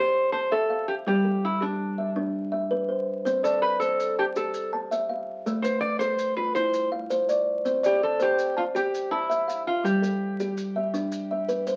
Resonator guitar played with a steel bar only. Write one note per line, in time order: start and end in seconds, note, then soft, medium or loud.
0.00 0.30 C5 loud
0.32 0.51 C5 loud
0.52 0.88 A4 loud
0.88 0.93 G4 medium
1.08 1.44 G4 loud
1.45 1.62 E4 medium
1.62 2.13 D4 medium
3.44 3.62 A4 medium
3.62 3.79 B4 loud
3.80 4.14 A4 medium
4.19 4.24 G4 medium
4.37 4.70 A4 medium
5.62 5.80 C5 medium
5.81 5.99 D5 loud
5.99 6.34 C5 medium
6.37 6.54 B4 medium
6.55 6.89 C5 medium
7.86 8.02 G4 medium
8.03 8.19 A4 medium
8.22 8.57 G4 medium
8.57 8.62 F4 medium
8.76 9.09 G4 loud
9.11 9.62 E4 medium
9.67 9.86 F4 medium
9.85 11.67 G4 medium